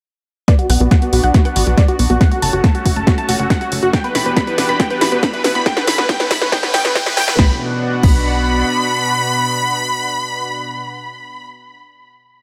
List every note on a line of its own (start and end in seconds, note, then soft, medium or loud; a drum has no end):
0.48 0.55 B3 medium
0.48 2.19 B3 medium
0.48 2.19 D4 medium
0.48 3.90 F#4 medium
0.48 0.55 D5 medium
0.48 kick loud
0.48 snare soft
0.48 closed hi-hat medium
0.48 riser medium
0.59 0.65 F#4 medium
0.59 0.66 F#4 medium
0.59 closed hi-hat soft
0.70 0.78 B1 medium
0.70 0.76 B3 medium
0.70 0.77 F#5 medium
0.70 open hi-hat loud
0.80 0.88 B1 medium
0.80 0.87 B3 medium
0.80 0.88 F#4 medium
0.80 closed hi-hat soft
0.91 0.98 F#4 medium
0.91 0.98 F#5 medium
0.91 kick loud
0.91 snare soft
0.91 closed hi-hat medium
1.02 1.08 B3 medium
1.02 1.09 F#4 medium
1.02 closed hi-hat soft
1.13 1.21 B1 medium
1.13 1.19 B3 medium
1.13 1.20 F#4 medium
1.13 open hi-hat medium
1.24 1.32 B1 medium
1.24 1.30 F#4 medium
1.24 1.31 F#5 medium
1.24 closed hi-hat soft
1.34 1.41 B3 medium
1.34 1.42 F#4 medium
1.34 kick loud
1.34 snare soft
1.34 closed hi-hat medium
1.45 1.52 B3 medium
1.45 1.52 F#5 medium
1.45 1.52 F#5 loud
1.45 closed hi-hat soft
1.56 1.64 A1 medium
1.56 1.62 F#4 medium
1.56 1.63 F#4 medium
1.56 open hi-hat loud
1.67 1.75 B1 medium
1.67 1.73 B3 medium
1.67 1.74 F#4 medium
1.67 closed hi-hat soft
1.78 1.84 B3 medium
1.78 1.85 D5 loud
1.78 1.85 D5 medium
1.78 kick loud
1.78 snare medium
1.78 closed hi-hat medium
1.88 1.95 F#4 medium
1.88 1.96 F#4 medium
1.88 closed hi-hat soft
1.99 2.07 B1 medium
1.99 2.06 B3 medium
1.99 open hi-hat medium
2.10 2.18 B1 medium
2.10 2.16 B3 medium
2.10 2.17 F#4 medium
2.10 closed hi-hat soft
2.21 3.92 A3 medium
2.21 3.92 C#4 medium
2.21 2.27 F#4 medium
2.21 2.28 F#5 medium
2.21 kick loud
2.21 snare medium
2.21 closed hi-hat medium
2.32 2.38 A3 medium
2.32 2.39 F#4 medium
2.32 closed hi-hat soft
2.42 2.50 F#1 medium
2.42 2.49 A3 medium
2.42 2.50 A5 medium
2.42 open hi-hat loud
2.53 2.61 F#1 medium
2.53 2.60 F#4 medium
2.53 closed hi-hat soft
2.64 2.70 A3 medium
2.64 2.71 A5 medium
2.64 kick loud
2.64 snare medium
2.64 closed hi-hat medium
2.75 2.81 A3 medium
2.75 2.82 F#4 medium
2.75 closed hi-hat soft
2.85 2.94 F#1 medium
2.85 2.93 F#4 medium
2.85 2.92 F#4 medium
2.85 kick medium
2.85 open hi-hat loud
2.96 3.04 F#1 medium
2.96 3.03 A3 medium
2.96 3.04 A5 medium
2.96 closed hi-hat soft
3.07 3.14 A3 medium
3.07 3.14 F#4 medium
3.07 kick loud
3.07 snare medium
3.07 closed hi-hat medium
3.18 3.24 F#4 medium
3.18 3.25 A5 loud
3.18 closed hi-hat soft
3.29 3.37 E1 medium
3.29 3.35 A3 medium
3.29 3.36 F#4 medium
3.29 open hi-hat loud
3.39 3.47 F#1 medium
3.39 3.46 A3 medium
3.39 3.47 F#4 medium
3.39 closed hi-hat soft
3.50 3.57 F#4 medium
3.50 3.57 F#5 medium
3.50 kick loud
3.50 snare medium
3.50 closed hi-hat medium
3.61 3.67 A3 medium
3.61 3.68 F#4 medium
3.61 closed hi-hat soft
3.72 3.80 F#1 medium
3.72 3.78 A3 medium
3.72 open hi-hat medium
3.83 3.91 F#1 medium
3.83 3.90 F#4 medium
3.83 3.89 F#4 medium
3.83 3.90 F#4 medium
3.83 closed hi-hat soft
3.93 7.35 E3 medium
3.93 4.00 B3 medium
3.93 5.64 B3 medium
3.93 5.64 D4 medium
3.93 5.64 F#4 medium
3.93 5.64 G4 medium
3.93 4.01 G5 medium
3.93 kick loud
3.93 snare medium
3.93 closed hi-hat medium
4.04 4.11 B3 medium
4.04 4.11 B4 medium
4.04 closed hi-hat soft
4.15 4.23 E1 medium
4.15 4.21 E4 medium
4.15 4.22 B5 medium
4.15 snare medium
4.15 open hi-hat loud
4.26 4.34 E1 medium
4.26 4.32 B3 medium
4.26 4.33 B4 medium
4.26 closed hi-hat soft
4.37 4.43 B3 medium
4.37 4.44 B5 medium
4.37 kick loud
4.37 snare medium
4.37 closed hi-hat medium
4.47 4.54 E4 medium
4.47 4.55 B4 medium
4.47 closed hi-hat soft
4.58 4.66 E1 loud
4.58 4.65 B3 medium
4.58 4.65 B4 medium
4.58 snare medium
4.58 open hi-hat loud
4.69 4.77 E1 medium
4.69 4.75 B3 medium
4.69 4.76 B5 medium
4.69 closed hi-hat soft
4.80 4.86 B3 medium
4.80 4.87 G5 medium
4.80 4.87 G5 loud
4.80 kick loud
4.80 snare medium
4.80 closed hi-hat medium
4.90 4.97 B3 medium
4.90 4.98 B4 medium
4.90 closed hi-hat soft
5.01 5.09 D1 loud
5.01 5.08 E4 medium
5.01 5.08 B5 medium
5.01 5.09 B5 medium
5.01 snare medium
5.01 open hi-hat loud
5.12 5.20 E1 medium
5.12 5.19 B3 medium
5.12 5.19 B4 medium
5.12 closed hi-hat soft
5.23 5.29 B3 medium
5.23 5.30 B5 medium
5.23 kick loud
5.23 snare medium
5.23 closed hi-hat medium
5.34 5.40 E4 medium
5.34 5.41 B4 medium
5.34 closed hi-hat soft
5.44 5.53 E1 medium
5.44 5.51 B3 medium
5.44 5.52 B4 medium
5.44 snare medium
5.44 open hi-hat medium
5.55 5.63 E1 medium
5.55 5.62 B3 medium
5.55 5.62 B5 medium
5.55 5.63 B5 medium
5.55 closed hi-hat soft
5.66 7.37 A3 medium
5.66 5.72 B3 medium
5.66 7.37 C#4 medium
5.66 5.73 G5 medium
5.66 5.73 G5 loud
5.66 kick loud
5.66 snare medium
5.66 closed hi-hat medium
5.77 5.83 B3 medium
5.77 5.84 B4 medium
5.77 snare medium
5.77 closed hi-hat soft
5.87 5.96 A1 loud
5.87 5.94 E4 medium
5.87 5.95 B5 medium
5.87 snare medium
5.87 open hi-hat loud
5.98 6.06 A1 medium
5.98 6.05 B3 medium
5.98 6.06 B4 medium
5.98 snare medium
5.98 closed hi-hat soft
6.09 6.16 B3 medium
6.09 6.16 G5 loud
6.09 6.16 G5 medium
6.09 kick loud
6.09 snare loud
6.09 closed hi-hat medium
6.20 6.27 B3 medium
6.20 6.27 B4 medium
6.20 snare medium
6.20 closed hi-hat soft
6.31 6.39 A1 loud
6.31 6.37 E4 medium
6.31 6.38 B5 medium
6.31 6.38 B5 loud
6.31 kick medium
6.31 snare loud
6.31 open hi-hat loud
6.42 6.50 A1 medium
6.42 6.48 B3 medium
6.42 6.49 B4 medium
6.42 snare medium
6.42 closed hi-hat soft
6.52 6.59 B3 medium
6.52 6.60 G5 medium
6.52 6.60 G5 loud
6.52 kick loud
6.52 snare loud
6.52 closed hi-hat medium
6.63 6.70 B3 medium
6.63 6.70 B4 medium
6.63 snare medium
6.63 closed hi-hat soft
6.74 6.82 A2 loud
6.74 6.80 B3 medium
6.74 6.81 G5 loud
6.74 snare loud
6.74 open hi-hat loud
6.85 6.93 A1 medium
6.85 6.91 B3 medium
6.85 6.92 B4 medium
6.85 snare medium
6.85 closed hi-hat soft
6.95 7.02 B3 medium
6.95 7.03 G5 loud
6.95 kick loud
6.95 snare loud
6.95 closed hi-hat medium
7.06 7.13 B3 medium
7.06 7.14 B4 medium
7.06 snare medium
7.06 closed hi-hat soft
7.17 7.25 A1 loud
7.17 7.24 B3 medium
7.17 7.24 G5 loud
7.17 snare loud
7.17 open hi-hat medium
7.28 7.36 A1 medium
7.28 7.34 B3 medium
7.28 7.35 B4 medium
7.28 snare loud
7.28 closed hi-hat soft
7.39 7.51 B1 medium
7.39 10.81 B2 medium
7.39 7.51 B3 loud
7.39 10.81 B3 medium
7.39 10.81 D4 medium
7.39 10.81 F#4 medium
7.39 10.81 F#5 medium
7.39 7.51 B5 loud
7.39 kick loud
7.39 snare medium
8.03 8.64 B1 loud
8.03 8.16 B3 loud
8.03 11.46 B5 loud
8.03 kick loud
8.03 crash medium